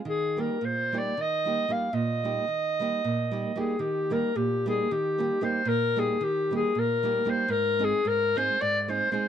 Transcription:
<<
  \new Staff \with { instrumentName = "Clarinet" } { \time 7/8 \key ees \major \tempo 4 = 113 aes'8 bes'8 c''8 d''8 ees''4 f''8 | ees''2. aes'8 | g'8 bes'8 g'8 aes'8 g'4 c''8 | bes'8 aes'8 g'8 aes'8 bes'4 c''8 |
bes'8 aes'8 bes'8 c''8 d''16. d''32 c''8 c''8 | }
  \new Staff \with { instrumentName = "Nylon-string guitar" } { \time 7/8 \key ees \major << { r8 <g bes ees' g'>8 r8 <g bes ees' g'>8 r8 <g bes ees' g'>8 <g bes ees' g'>8 | r8 <g bes ees' g'>8 r8 <g bes ees' g'>8 r8 <g bes ees' g'>8 <g bes ees' g'>8 | r8 <g bes ees' g'>8 r8 <g bes ees' g'>8 r8 <g bes ees' g'>8 <g bes ees' g'>8 | r8 <g bes ees' g'>8 r8 <g bes ees' g'>8 r8 <g bes ees' g'>8 <g bes ees' g'>8 |
r8 <aes c' ees' aes'>8 r8 <aes c' ees' aes'>8 r8 <aes c' ees' aes'>8 <aes c' ees' aes'>8 | } \\ { ees4 bes,4 ees4 r8 | bes,4 ees4 bes,4 r8 | ees4 bes,4 ees4 r8 | bes,4 ees4 bes,4 r8 |
aes,4 aes,4 aes,4 r8 | } >> }
>>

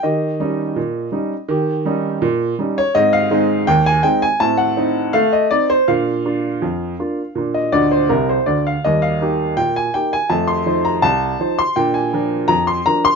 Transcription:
<<
  \new Staff \with { instrumentName = "Upright piano" } { \time 2/4 \key ees \major \tempo 4 = 82 ees''2~ | ees''4~ ees''16 r8 des''16 | ees''16 f''8. g''16 aes''16 g''16 aes''16 | a''16 ges''8. f''16 ees''16 d''16 c''16 |
f''2~ | f''16 ees''16 d''16 c''16 bes'16 c''16 d''16 f''16 | ees''16 f''8. g''16 aes''16 g''16 aes''16 | a''16 c'''8 bes''16 a''8. c'''16 |
g''16 aes''8. bes''16 c'''16 bes''16 c'''16 | }
  \new Staff \with { instrumentName = "Upright piano" } { \time 2/4 \key ees \major <ees g'>8 <g des' ees'>8 bes,8 <g des' ees'>8 | <ees g'>8 <g des' ees'>8 bes,8 <g des' ees'>8 | <aes, c'>8 <aes c' ees'>8 ees,8 <aes c' ees'>8 | <a, c'>8 <c' ees'>8 a8 <c' ees'>8 |
<bes, d'>8 <bes d' f'>8 f,8 <bes d' f'>8 | <bes, d'>8 <d, d>8 <c, c>8 <d, d>8 | <ees, g>8 <bes ees' g'>8 bes,8 <bes ees' g'>8 | <f, a>8 <f ees' c''>8 c,8 <f ees' c''>8 |
<bes, d'>8 <f d' bes'>8 f,8 <f d' bes'>8 | }
>>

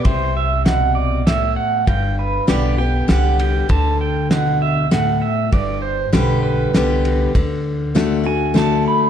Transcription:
<<
  \new Staff \with { instrumentName = "Pedal steel guitar" } { \time 3/4 \key g \major \tempo 4 = 99 c''8 e''8 fis''8 d''8 e''8 fis''8 | g''8 b'8 d''8 g''8 fis''8 g''8 | a''8 g''8 fis''8 e''8 fis''8 e''8 | d''8 c''8 b'8 b'4. |
r4. aes''8 a''8 b''8 | }
  \new Staff \with { instrumentName = "Steel-string acoustic guitar" } { \clef bass \time 3/4 \key g \major << { r2. | r4 <d g b g'>8 <b g'>8 <d g b g'>4 | r2. | r4 <d g b g'>4 <d g b g'>4 |
r4 <d a d' fis'>8 <d' fis'>8 <d a d' fis'>4 | } \\ { c4 b,4 a,4 | g,2 r4 | d4 b,4 a,4 | g,2 r4 |
r2. | } >> }
  \new Staff \with { instrumentName = "Upright bass" } { \clef bass \time 3/4 \key g \major c,2. | g,,4 b,,4 c,4 | d,2. | g,,4 b,,4 c,4 |
d,2. | }
  \new DrumStaff \with { instrumentName = "Drums" } \drummode { \time 3/4 <bd cymr>4 <cymr sn>4 <cymr sn>4 | <bd cymr>4 <cymr sn>4 <cymr sn>8 cymr8 | <bd cymr>4 <cymr sn>4 <cymr sn>4 | <bd cymr>4 <cymr sn>4 <cymr sn>8 cymr8 |
<bd cymr>4 <cymr sn>4 <cymr sn>4 | }
>>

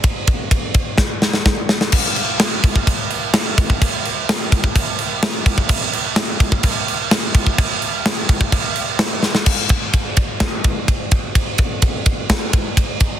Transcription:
\new DrumStaff \with { instrumentName = "Drums" } \drummode { \time 4/4 \tempo 4 = 127 <bd cymr>8 <bd cymr>8 <bd cymr>8 <bd cymr>8 <bd sn>8 sn16 sn16 <bd sn>8 sn16 sn16 | <cymc bd>8 cymc8 <cymc sn>8 <cymc bd>16 bd16 <cymc bd>8 cymc8 <cymc sn>8 <cymc bd>16 bd16 | <cymc bd>8 cymc8 <cymc sn>8 <cymc bd>16 bd16 <cymc bd>8 cymc8 <cymc sn>8 <cymc bd>16 bd16 | <cymc bd>8 cymc8 <cymc sn>8 <cymc bd>16 bd16 <cymc bd>8 cymc8 <cymc sn>8 <cymc bd>16 bd16 |
<cymc bd>8 cymc8 <cymc sn>8 <cymc bd>16 bd16 <cymc bd>8 cymc8 <cymc sn>8 sn16 sn16 | <cymc bd>8 <bd cymr>8 <bd cymr>8 <bd cymr>8 <bd cymr sn>8 <bd cymr>8 <bd cymr>8 <bd cymr>8 | <bd cymr>8 <bd cymr>8 <bd cymr>8 <bd cymr>8 <bd cymr sn>8 <bd cymr>8 <bd cymr>8 <bd cymr>8 | }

